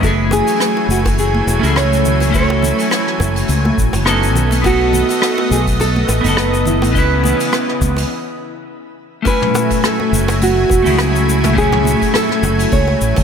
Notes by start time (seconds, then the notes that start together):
Already playing: E3
0.00 F#1 F#3 A3 C#4 E4 G#5, kick, open hi-hat, high bongo, shaker
0.04 F#4 G#4 A4
0.31 G#4, high bongo, high conga, low conga, shaker
0.47 open hi-hat, shaker
0.60 cross-stick, open hi-hat, shaker
0.77 high bongo
0.89 F#1 F#4, high conga, shaker
1.05 kick, open hi-hat, high bongo, shaker
1.19 G#4, open hi-hat, shaker
1.35 high conga
1.47 E1, high bongo, shaker
1.59 C#2 A3 C#4 E4, open hi-hat
1.64 F#4 G#4 A4, shaker
1.76 C#5, cross-stick, open hi-hat, high bongo, high conga, shaker
1.93 shaker
2.05 low conga, shaker
2.20 open hi-hat, high bongo, high conga, shaker
2.30 A3 C#4 E4, kick, shaker
2.35 F#4 A4 C#5, open hi-hat
2.50 high bongo
2.62 high conga, low conga, shaker
2.78 open hi-hat, shaker
2.91 cross-stick, open hi-hat, high bongo, shaker
3.07 cross-stick
3.20 F#1, kick, high bongo, high conga, shaker
3.36 open hi-hat, shaker
3.48 C#2, open hi-hat, shaker
3.65 high bongo, high conga
3.78 A1, kick, shaker
3.93 F#1, open hi-hat, high bongo, shaker
4.05 B3 C#4 D#4 F#4 A4, cross-stick, open hi-hat, high conga, shaker
4.23 shaker
4.35 B1 A3 B3 D#5, high bongo, low conga, shaker
4.51 open hi-hat, high conga, shaker
4.62 B3 D#4, kick, open hi-hat, high bongo, shaker
4.66 F#4 A4
4.93 high conga, low conga, shaker
5.09 open hi-hat, high bongo, shaker
5.22 cross-stick, open hi-hat, shaker
5.38 high bongo
5.50 B1 G#4, high conga, shaker
5.67 kick, open hi-hat, shaker
5.80 A4, open hi-hat, high bongo, shaker
5.96 high conga
6.09 A1, high bongo, shaker
6.21 F#1 B3 D#4, open hi-hat
6.26 F#4 A4, shaker
6.37 B4, cross-stick, high conga, shaker
6.54 high bongo, shaker
6.65 E4, low conga, shaker
6.82 open hi-hat, high bongo, high conga, shaker
6.91 C#2 C#3 E3 B3 C#4 D#5, kick, open hi-hat
6.96 E4 B4, shaker
7.24 high bongo, high conga, low conga, shaker
7.40 open hi-hat, shaker
7.53 cross-stick, high bongo, shaker
7.68 cross-stick
7.81 C#2, kick, high conga, shaker
7.97 open hi-hat, high bongo, shaker
9.22 F#3 A3 C#4 E4 G#5, kick, open hi-hat, high bongo
9.27 F#4 B4 G#5, shaker
9.42 mid tom
9.55 high bongo, high conga, shaker
9.70 kick, open hi-hat, shaker
9.84 A4, cross-stick, open hi-hat, shaker
10.00 high bongo, high conga
10.13 F#1, shaker
10.28 open hi-hat, high bongo, shaker
10.41 F#4, open hi-hat, high conga, shaker
10.70 E1, kick, high bongo, shaker
10.82 C#2 A3 C#4 E4, high conga, low conga, shaker
10.87 F#4 G#4, open hi-hat
10.99 cross-stick, open hi-hat, high bongo, shaker
11.16 shaker
11.29 shaker
11.44 mid tom, open hi-hat, high bongo, high conga, shaker
11.53 A3 C#4 E4, kick
11.57 F#4 G#4 C#5, open hi-hat, shaker
11.72 mid tom, high bongo
11.85 high conga, shaker
12.02 kick, open hi-hat, shaker
12.14 A4, cross-stick, open hi-hat, high bongo, shaker
12.29 cross-stick, high conga
12.43 F#1, high bongo, shaker
12.59 open hi-hat, shaker
12.71 C#2 C#5, kick, open hi-hat, high conga, shaker
12.88 high bongo
13.01 A1, shaker
13.16 F#1, kick, open hi-hat, high bongo, high conga, low conga, shaker